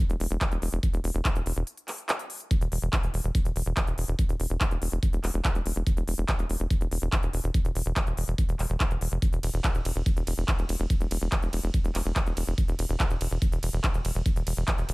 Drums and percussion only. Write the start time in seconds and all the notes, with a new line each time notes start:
0.10 closed hi-hat
0.20 open hi-hat
0.31 closed hi-hat
0.41 kick, clap, closed hi-hat
0.52 closed hi-hat
0.62 open hi-hat
0.73 closed hi-hat
0.83 kick, closed hi-hat
0.94 closed hi-hat
1.04 open hi-hat
1.15 closed hi-hat
1.25 kick, clap, closed hi-hat
1.35 closed hi-hat
1.46 open hi-hat
1.56 closed hi-hat
1.67 closed hi-hat
1.77 closed hi-hat
1.88 clap, open hi-hat
1.98 closed hi-hat
2.09 clap, closed hi-hat
2.19 closed hi-hat
2.30 open hi-hat
2.40 closed hi-hat
2.51 kick, closed hi-hat
2.61 closed hi-hat
2.72 open hi-hat
2.82 closed hi-hat
2.93 kick, clap, closed hi-hat
3.03 closed hi-hat
3.14 open hi-hat
3.24 closed hi-hat
3.35 kick, closed hi-hat
3.45 closed hi-hat
3.56 open hi-hat
3.66 closed hi-hat
3.77 kick, clap, closed hi-hat
3.87 closed hi-hat
3.98 open hi-hat
4.08 closed hi-hat
4.19 kick, closed hi-hat
4.29 closed hi-hat
4.40 open hi-hat
4.50 closed hi-hat
4.61 kick, clap, closed hi-hat
4.71 closed hi-hat
4.82 open hi-hat
4.92 closed hi-hat
5.03 kick, closed hi-hat
5.13 closed hi-hat
5.24 clap, open hi-hat
5.34 closed hi-hat
5.45 kick, clap, closed hi-hat
5.55 closed hi-hat
5.66 open hi-hat
5.76 closed hi-hat
5.87 kick, closed hi-hat
5.97 closed hi-hat
6.08 open hi-hat
6.18 closed hi-hat
6.29 kick, clap, closed hi-hat
6.39 closed hi-hat
6.50 open hi-hat
6.60 closed hi-hat
6.70 kick, closed hi-hat
6.81 closed hi-hat
6.91 open hi-hat
7.02 closed hi-hat
7.12 kick, clap, closed hi-hat
7.23 closed hi-hat
7.33 open hi-hat
7.44 closed hi-hat
7.54 kick, closed hi-hat
7.65 closed hi-hat
7.75 open hi-hat
7.86 closed hi-hat
7.96 kick, clap, closed hi-hat
8.07 closed hi-hat
8.17 open hi-hat
8.28 closed hi-hat
8.38 kick, closed hi-hat
8.49 closed hi-hat
8.59 clap, open hi-hat
8.70 closed hi-hat
8.80 kick, clap, closed hi-hat
8.91 closed hi-hat
9.01 open hi-hat
9.12 closed hi-hat
9.22 kick, closed hi-hat
9.33 closed hi-hat
9.43 open hi-hat, ride
9.54 closed hi-hat
9.64 kick, clap, closed hi-hat
9.75 closed hi-hat
9.85 open hi-hat, ride
9.96 closed hi-hat
10.06 kick, closed hi-hat
10.17 closed hi-hat
10.27 open hi-hat, ride
10.38 closed hi-hat
10.48 kick, clap, closed hi-hat
10.59 closed hi-hat
10.69 open hi-hat, ride
10.80 closed hi-hat
10.90 kick, closed hi-hat
11.01 closed hi-hat
11.11 open hi-hat, ride
11.21 closed hi-hat
11.32 kick, clap, closed hi-hat
11.42 closed hi-hat
11.53 open hi-hat, ride
11.63 closed hi-hat
11.74 kick, closed hi-hat
11.84 closed hi-hat
11.95 clap, open hi-hat, ride
12.05 closed hi-hat
12.16 kick, clap, closed hi-hat
12.26 closed hi-hat
12.37 open hi-hat, ride
12.47 closed hi-hat
12.58 kick, closed hi-hat
12.68 closed hi-hat
12.79 open hi-hat, ride
12.89 closed hi-hat
13.00 kick, clap, closed hi-hat
13.10 closed hi-hat
13.21 open hi-hat, ride
13.31 closed hi-hat
13.42 kick, closed hi-hat
13.52 closed hi-hat
13.63 open hi-hat, ride
13.73 closed hi-hat
13.84 kick, clap, closed hi-hat
13.94 closed hi-hat
14.05 open hi-hat, ride
14.15 closed hi-hat
14.26 kick, closed hi-hat
14.36 closed hi-hat
14.47 open hi-hat, ride
14.57 closed hi-hat
14.68 kick, clap, closed hi-hat
14.78 closed hi-hat
14.89 open hi-hat, ride